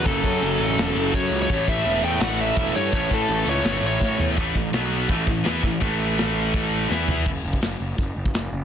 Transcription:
<<
  \new Staff \with { instrumentName = "Lead electric guitar" } { \time 4/4 \key a \major \tempo 4 = 167 a'2. cis''8. cis''16~ | cis''8 e''4 g''8 fis''8 e''4 cis''8 | cis''8 a'4 cis''4 cis''4 r8 | r1 |
r1 | r1 | }
  \new Staff \with { instrumentName = "Analog synth pad" } { \time 4/4 \key a \major <fis cis' fis' a'>1 | <a e' b' cis''>1~ | <a e' b' cis''>1 | r1 |
r1 | r1 | }
  \new Staff \with { instrumentName = "Distorted electric guitar" } { \clef bass \time 4/4 \key a \major <fis, cis fis>1 | <a, e a>1 | <a, e a>1 | <a, e a>8 <a, e>8 <b, fis b>4 <a, e a>8 <a, e>8 <e b e'>8 <a, e>8 |
<a, e a>2. <e b e'>4 | r1 | }
  \new Staff \with { instrumentName = "Distorted electric guitar" } { \clef bass \time 4/4 \key a \major <fis, cis fis>4. <fis, cis fis>2~ <fis, cis fis>8 | <a, e a>4. <a, e a>2~ <a, e a>8 | <a, e a>4. <a, e a>2~ <a, e a>8 | <a, e a>8 <a, e>8 <b, fis b>4 <a, e a>8 <a, e>8 <e b e'>8 <a, e>8 |
<a, e a>2. <e b e'>4 | r1 | }
  \new Staff \with { instrumentName = "Picked electric bass" } { \clef bass \time 4/4 \key a \major fis,,8 fis,8 fis,,8 a,,8 e,,8 fis,,8 fis,8 cis,8 | a,,8 a,,8 e,,8 e,8 a,,4 e,,8 g,8 | a,,8 a,8 a,,8 cis,8 g,,8 a,,8 a,8 e,8 | a,,8 a,,8 b,,4 a,,8 a,,8 e,8 a,,8 |
a,,2. e,4 | fis,,8 fis,,8 fis,,8 fis,,8 fis,,8 fis,,8 fis,,8 fis,,8 | }
  \new DrumStaff \with { instrumentName = "Drums" } \drummode { \time 4/4 <bd cymr>8 <bd cymr>8 cymr8 cymr8 <cymr sn>8 cymr8 <bd cymr>8 cymr8 | <bd cymr>8 <bd cymr>8 cymr8 cymr8 <cymr sn>8 cymr8 <bd cymr>8 cymr8 | <bd cymr>8 <bd cymr>8 cymr8 cymr8 <cymr sn>8 cymr8 <bd sn>8 tomfh8 | <bd rb>8 bd8 <rb sn>4 <bd rb>8 bd8 <rb sn>8 bd8 |
<bd rb>4 <rb sn>4 <bd rb>4 sn8 tomfh8 | <cymc bd>8. bd16 <hho sn>4 <hho bd>8. bd16 <hho sn>4 | }
>>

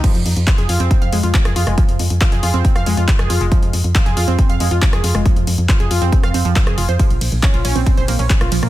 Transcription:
<<
  \new Staff \with { instrumentName = "Synth pluck" } { \time 4/4 \key f \minor \tempo 4 = 138 f16 r8. f'16 aes'16 f'16 c'16 r16 f''16 aes16 f'16 r16 aes'16 f'16 aes16 | f16 r8. f'16 aes'16 f'16 c'16 c'16 f''16 aes16 f'16 r16 aes'16 f'16 aes16 | f16 r8. f'16 aes'16 f'16 c'16 r16 f''16 aes16 f'16 r16 aes'16 f'16 aes16 | r4 f'16 aes'16 f'16 c'16 c'16 f''16 c'16 f16 f16 aes'16 f'16 c''16 |
f16 r8. des'16 f'16 des'16 c'16 c'16 c''16 bes16 des'16 r16 f'16 f16 bes16 | }
  \new Staff \with { instrumentName = "FM bass" } { \clef bass \time 4/4 \key f \minor r16 f,16 f,16 f,16 r16 f,16 f,16 f,16 r16 f,16 f,16 f,16 r16 f,16 f,16 f,,16 | r16 f,16 f,16 f,16 r16 f,16 f,16 f,16 r16 f,16 f,16 f,16 r16 f,16 f,16 f,,16 | r16 f,16 f,16 f,16 r16 f,16 f,16 f,16 r16 f,16 f,16 f,16 r16 f,16 f,16 f,,16 | r16 f,16 f,16 f,16 r16 f,16 f,16 f,16 r16 f,16 f,16 f,16 r16 f,16 f,,16 f,16 |
r16 bes,,16 bes,,16 bes,,16 r16 bes,,16 bes,,16 bes,,16 r16 bes,,16 bes,,16 bes,,16 r16 bes,,16 bes,,16 bes,16 | }
  \new DrumStaff \with { instrumentName = "Drums" } \drummode { \time 4/4 <cymc hh bd>16 hh16 hho16 hh16 <hc hh bd>16 hh16 hho16 hh16 <hh bd>16 hh16 hho16 hh16 <hc hh bd>16 <hh ss>16 hho16 <hh ss>16 | <hh bd>16 hh16 hho16 hh16 <hc hh bd>16 hh16 hho16 hh16 <hh bd>16 <hh ss>16 hho16 hh16 <hc hh bd>16 <hh ss>16 hho16 hh16 | <hh bd>16 hh16 hho16 hh16 <hc hh bd>16 hh16 hho16 hh16 <hh bd>16 hh16 hho16 hh16 <hc hh bd>16 <hh ss>16 hho16 <hh ss>16 | <hh bd>16 hh16 hho16 hh16 <hc hh bd>16 hh16 hho16 hh16 <hh bd>16 <hh ss>16 hho16 hh16 <hc hh bd>16 <hh ss>16 hho16 hh16 |
<hh bd cymr>16 hh16 <hho cymr>16 hh16 <hc hh bd cymr>16 hh16 <hho cymr>16 hh16 <hh bd cymr>16 hh16 <hho cymr>16 hh16 <hc hh bd cymr>16 <hh ss>16 <hho cymr>16 <hh ss>16 | }
>>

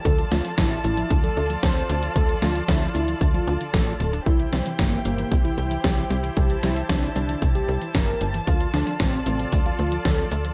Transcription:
<<
  \new Staff \with { instrumentName = "String section" } { \time 4/4 \key d \minor \tempo 4 = 114 << { a''1~ | a''1 | g''1 | a''1~ |
a''1 | } \\ { <f' a' d''>1~ | <f' a' d''>1 | <e' g' c''>1~ | <e' g' c''>1 |
<f' a' d''>1 | } >> }
  \new Staff \with { instrumentName = "Analog synth lead" } { \time 4/4 \key d \minor a'16 r16 f'16 r16 e'16 r16 e'8 r16 a'8 r16 c''8. r16 | a'16 r16 f'16 r16 e'16 r16 e'8 r16 f'8 r16 a'8. r16 | e'16 r16 c'16 r16 bes16 r16 bes8 r16 e'8 r16 g'8. r16 | g'16 r16 e'16 r16 d'16 r16 d'8 r16 g'8 r16 bes'8. r16 |
f'16 r16 d'16 r16 c'16 r16 c'8 r16 f'8 r16 a'8. r16 | }
  \new Staff \with { instrumentName = "Synth arpeggio sound" } { \clef bass \time 4/4 \key d \minor d16 f16 a16 f16 d16 f16 a16 f16 d16 f16 a16 f16 d16 f16 a16 f16 | d16 f16 a16 f16 d16 f16 a16 f16 d16 f16 d16 d16 d16 d''16 a16 d'16 | c16 e16 g16 e16 c16 e16 g16 e16 c16 e16 g16 e16 c16 e16 g16 e16 | c16 e16 g16 e16 c16 e16 g16 e16 c16 e16 g16 e16 c16 e16 g16 e16 |
d16 f16 a16 f16 d16 f16 a16 f16 d16 f16 a16 f16 d16 f16 a16 f16 | }
  \new Staff \with { instrumentName = "Analog synth bass" } { \clef bass \time 4/4 \key d \minor d,8 d,8 a,,8 a,,8 d,8 d,8 d,8 d,8 | d,8 d,8 d,8 d,8 d,8 d,8 a,,8 d,,8 | c,8 c,8 g,,8 g,,8 c,8 c,8 c,8 c,8 | c,8 c,8 c,8 c,8 c,8 c,8 g,,8 g,,8 |
d,8 d,8 a,,8 a,,8 d,8 d,8 d,8 d,8 | }
  \new DrumStaff \with { instrumentName = "Drums" } \drummode { \time 4/4 <hh bd>16 hh16 <hh sn>16 hh16 <hh bd sn>16 hh16 hh16 hh16 <hh bd>16 hh16 hh16 hh16 <hh bd sn>16 hh16 hh16 hh16 | <hh bd>16 hh16 <hh sn>16 hh16 <hh bd sn>16 hh16 hh16 hh16 <hh bd>16 hh16 hh16 hh16 <hh bd sn>16 hh16 hh16 hh16 | <hh bd>16 hh16 <hh sn>16 hh16 <hh bd sn>16 hh16 hh16 hh16 <hh bd>16 hh16 hh16 hh16 <hh bd sn>16 hh16 hh16 hh16 | <hh bd>16 hh16 <hh sn>16 hh16 <hh bd sn>16 hh16 hh16 hh16 <hh bd>16 hh16 hh16 hh16 <hh bd sn>16 hh16 hh16 hh16 |
<hh bd>16 hh16 <hh sn>16 hh16 <hh bd sn>16 hh16 hh16 hh16 <hh bd>16 hh16 hh16 hh16 <hh bd sn>16 hh16 hh16 hh16 | }
>>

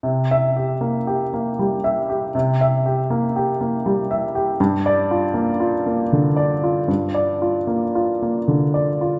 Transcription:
\new Staff \with { instrumentName = "Grand piano" } { \time 3/4 \key c \mixolydian \tempo 4 = 78 << { \tuplet 3/2 { r8 e''4 } r2 | r2. | \tuplet 3/2 { r8 d''4 } r2 | r2. | } \\ { \tuplet 3/2 { c4 g'8 bes8 g'8 bes8 g8 e''8 g'8 } | \tuplet 3/2 { c8 e''8 g'8 bes8 g'8 bes8 g8 e''8 g'8 } | \tuplet 3/2 { g,4 f'8 bes8 f'8 bes8 d8 d''8 f'8 } | \tuplet 3/2 { g,8 d''8 f'8 bes8 f'8 bes8 d8 d''8 f'8 } | } >> }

